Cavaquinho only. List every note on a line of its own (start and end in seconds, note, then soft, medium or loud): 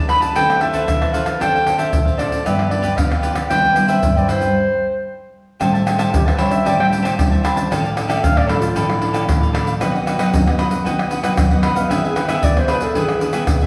0.08 0.34 E4 medium
0.08 0.34 G#4 medium
0.08 0.35 B4 medium
0.08 0.35 D5 medium
0.35 0.59 A4 medium
0.35 0.61 B4 medium
0.35 0.60 C5 medium
0.35 0.61 A5 medium
0.60 0.72 A4 soft
0.60 0.73 B4 soft
0.60 0.73 C5 medium
0.60 0.73 A5 soft
0.73 0.83 A4 medium
0.73 0.84 B4 medium
0.73 0.83 C5 medium
0.73 0.84 A5 medium
1.01 1.13 B4 soft
1.01 1.13 C5 soft
1.01 1.13 A5 soft
1.13 1.26 A4 medium
1.13 1.25 B4 medium
1.13 1.26 C5 medium
1.13 1.24 A5 medium
1.26 1.39 B4 soft
1.26 1.39 C5 soft
1.26 1.39 A5 medium
1.40 1.52 D4 medium
1.40 1.53 A4 medium
1.40 1.53 C5 medium
1.40 1.52 F5 medium
1.53 1.64 A4 soft
1.53 1.65 C5 soft
1.53 1.65 F5 soft
1.65 1.76 D4 soft
1.65 1.77 A4 soft
1.65 1.77 C5 medium
1.65 1.77 F5 medium
1.78 1.88 D4 medium
1.78 1.88 A4 medium
1.78 1.88 C5 medium
1.78 1.88 F5 medium
2.05 2.17 A4 soft
2.05 2.17 C5 soft
2.05 2.18 F5 soft
2.17 2.43 D4 medium
2.17 2.44 A4 medium
2.17 2.44 C5 medium
2.17 2.44 F5 medium
2.45 2.69 F4 medium
2.45 2.70 G4 medium
2.45 2.70 B4 medium
2.45 2.71 D5 medium
2.70 2.81 F4 soft
2.70 2.81 G4 soft
2.70 2.81 B4 soft
2.70 2.81 D5 soft
2.82 2.92 F4 medium
2.82 2.92 G4 medium
2.82 2.93 B4 medium
2.82 2.93 D5 medium
3.10 3.21 G4 soft
3.10 3.22 B4 soft
3.10 3.22 D5 soft
3.22 3.35 F4 medium
3.22 3.35 G4 medium
3.22 3.35 B4 medium
3.22 3.33 D5 medium
3.34 3.49 G4 soft
3.34 3.49 B4 soft
3.34 3.48 D5 medium
3.50 3.62 E4 medium
3.50 3.63 B4 medium
3.50 3.62 C5 medium
3.50 3.62 G5 medium
3.63 3.75 B4 soft
3.63 3.74 C5 soft
3.63 3.75 G5 soft
3.74 3.86 E4 soft
3.74 3.87 B4 medium
3.74 3.87 C5 soft
3.74 3.87 G5 medium
3.87 3.98 E4 medium
3.87 3.98 B4 medium
3.87 3.98 C5 medium
3.87 3.98 G5 medium
4.16 4.28 B4 soft
4.16 4.27 C5 soft
4.16 4.28 G5 medium
4.28 4.54 E4 medium
4.28 4.54 B4 medium
4.28 4.54 C5 medium
4.28 4.54 G5 medium
5.60 5.72 G4 medium
5.60 5.72 C5 medium
5.60 5.73 E5 medium
5.60 5.72 A5 medium
5.74 5.85 C5 soft
5.74 5.86 E5 medium
5.74 5.86 A5 soft
5.86 5.97 G4 soft
5.86 5.97 C5 soft
5.86 5.97 E5 medium
5.86 5.98 A5 medium
5.98 6.08 G4 medium
5.98 6.08 C5 medium
5.98 6.08 E5 medium
5.98 6.09 A5 medium
6.26 6.37 C5 soft
6.26 6.38 E5 soft
6.26 6.38 A5 medium
6.37 6.63 G4 medium
6.37 6.64 C5 medium
6.37 6.64 E5 medium
6.37 6.64 A5 medium
6.64 6.89 G4 medium
6.64 6.90 C5 medium
6.64 6.90 E5 medium
6.64 6.90 A5 medium
6.90 7.01 G4 soft
6.90 7.01 C5 medium
6.90 7.02 E5 soft
6.90 7.02 A5 medium
7.02 7.13 G4 medium
7.02 7.13 C5 medium
7.02 7.13 E5 medium
7.02 7.13 A5 medium
7.31 7.42 C5 soft
7.31 7.43 E5 soft
7.31 7.43 A5 soft
7.43 7.56 G4 medium
7.43 7.56 C5 medium
7.43 7.55 E5 medium
7.43 7.55 A5 medium
7.56 7.70 C5 soft
7.56 7.69 E5 medium
7.56 7.69 A5 medium
7.71 7.83 D4 medium
7.71 7.83 A4 medium
7.71 7.83 D5 medium
7.71 7.83 F5 medium
7.84 7.94 A4 soft
7.84 7.95 D5 soft
7.84 7.96 F5 medium
7.95 8.07 D4 soft
7.95 8.07 A4 soft
7.95 8.07 D5 medium
7.95 8.08 F5 medium
8.08 8.18 D4 medium
8.08 8.18 A4 medium
8.08 8.18 D5 medium
8.08 8.19 F5 medium
8.36 8.46 A4 soft
8.36 8.47 D5 soft
8.36 8.48 F5 soft
8.47 8.73 D4 medium
8.47 8.74 A4 medium
8.47 8.74 D5 medium
8.47 8.74 F5 medium
8.75 8.99 D4 medium
8.75 9.00 A4 medium
8.75 9.01 D5 medium
8.75 9.01 F5 medium
9.01 9.11 D4 soft
9.01 9.12 A4 medium
9.01 9.12 D5 medium
9.01 9.13 F5 medium
9.13 9.23 D4 medium
9.13 9.23 A4 medium
9.13 9.23 D5 medium
9.13 9.23 F5 medium
9.41 9.53 A4 soft
9.41 9.53 D5 soft
9.41 9.53 F5 medium
9.53 9.66 D4 medium
9.53 9.66 A4 medium
9.53 9.65 D5 medium
9.53 9.65 F5 medium
9.66 9.80 A4 soft
9.66 9.79 D5 soft
9.66 9.79 F5 medium
9.81 9.93 F#4 medium
9.81 9.93 B4 medium
9.81 9.93 D#5 medium
9.81 9.93 F#5 medium
9.95 10.05 B4 soft
9.95 10.06 D#5 soft
9.95 10.06 F#5 medium
10.06 10.18 F#4 soft
10.06 10.18 B4 medium
10.06 10.18 D#5 medium
10.06 10.19 F#5 medium
10.19 10.28 F#4 medium
10.19 10.29 B4 medium
10.19 10.29 D#5 medium
10.19 10.29 F#5 medium
10.46 10.57 B4 soft
10.46 10.58 D#5 soft
10.46 10.58 F#5 medium
10.58 10.83 F#4 medium
10.58 10.84 B4 medium
10.58 10.84 D#5 medium
10.58 10.85 F#5 medium
10.85 11.09 F#4 medium
10.85 11.10 B4 medium
10.85 11.10 D#5 medium
10.85 11.11 F#5 medium
11.10 11.22 F#4 soft
11.10 11.22 B4 medium
11.10 11.22 D#5 soft
11.10 11.23 F#5 medium
11.23 11.33 F#4 medium
11.23 11.33 B4 medium
11.23 11.33 D#5 medium
11.23 11.33 F#5 medium
11.51 11.62 B4 soft
11.51 11.63 D#5 soft
11.51 11.63 F#5 soft
11.63 11.76 F#4 medium
11.63 11.76 B4 medium
11.63 11.75 D#5 medium
11.63 11.74 F#5 medium
11.75 11.89 B4 soft
11.75 11.89 D#5 soft
11.75 11.88 F#5 medium
11.89 12.02 E4 medium
11.89 12.02 G#4 medium
11.89 12.03 B4 medium
11.89 12.03 E5 medium
12.04 12.15 G#4 soft
12.04 12.16 B4 soft
12.04 12.16 E5 medium
12.16 12.26 E4 medium
12.16 12.27 G#4 medium
12.16 12.27 B4 medium
12.16 12.27 E5 medium
12.28 12.38 E4 medium
12.28 12.38 G#4 medium
12.28 12.38 B4 medium
12.28 12.38 E5 medium
12.56 12.67 G#4 soft
12.56 12.68 B4 soft
12.56 12.68 E5 soft
12.68 12.94 E4 medium
12.68 12.94 G#4 medium
12.68 12.94 B4 medium
12.68 12.95 E5 medium
12.95 13.19 E4 medium
12.95 13.20 G#4 medium
12.95 13.20 B4 medium
12.95 13.21 E5 medium
13.20 13.32 E4 soft
13.20 13.32 G#4 soft
13.20 13.32 B4 medium
13.20 13.33 E5 soft
13.33 13.43 E4 medium
13.33 13.43 G#4 medium
13.33 13.43 B4 medium
13.33 13.43 E5 medium
13.62 13.67 G#4 soft
13.62 13.67 B4 soft
13.62 13.67 E5 soft